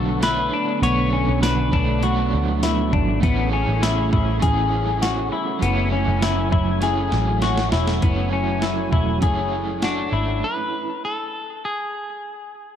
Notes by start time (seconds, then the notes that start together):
Already playing: B1 B2 D3 F#3 A3 B3 D4 F#4 A4 C#5
0.21 A3 D4 E4 B4, snare, closed hi-hat, tambourine
0.25 A4 C#5
0.53 D4
0.82 B1 B2 F#3 A3 B3 D4 A4 C#5, closed hi-hat
0.87 C#5
1.13 C#4
1.28 B1
1.43 D4 B4, snare, closed hi-hat, tambourine
1.72 B1 D4 A4 C#5, kick
1.76 A3 D4
2.01 B2 F#3 A3 F#4, closed hi-hat
2.06 D4 A4 C#5
2.33 D2
2.63 E4, snare, closed hi-hat, tambourine
2.93 G#1 D4, kick
3.20 A1 A3 B3 C#4 G#4, kick, closed hi-hat
3.25 E4 G#4 C#5
3.53 C#4
3.68 A1
3.83 E4, snare, closed hi-hat, tambourine
4.13 A1 E4, kick
4.39 A1 A3 C#4 G#4, kick, closed hi-hat
4.45 E4 G#4 C#5
5.02 F#4, snare, closed hi-hat, tambourine
5.32 E4
5.59 F#1 F#3 A3 B3 C#4 E4 G#5, closed hi-hat
5.64 E4 A4 C#5
5.92 C#4
6.08 F#1
6.22 E4, snare, closed hi-hat, tambourine
6.52 F#1 E4, kick
6.81 F#3 C#4 E4 G#4 A4 C#5, snare, closed hi-hat
7.12 A1, snare
7.41 C#4 E4 F#4 A4, snare, closed hi-hat
7.46 C#5
7.57 snare
7.72 E1 E4, snare
7.87 snare
8.00 F#1 F#3 A3 B3 C#4 E4 C#5 G#5, kick, closed hi-hat
8.05 E4 A4
8.09 C#5
8.33 C#4
8.62 E4, snare, closed hi-hat
8.92 E1 E4, kick
9.21 F#1 C#4 E4 G#4 A4, kick, closed hi-hat
9.26 C#5
9.82 D4 E4 F#4 A4, snare, closed hi-hat
9.87 C#5
10.12 G#1 E4
10.44 B4
11.05 A4
11.65 G#4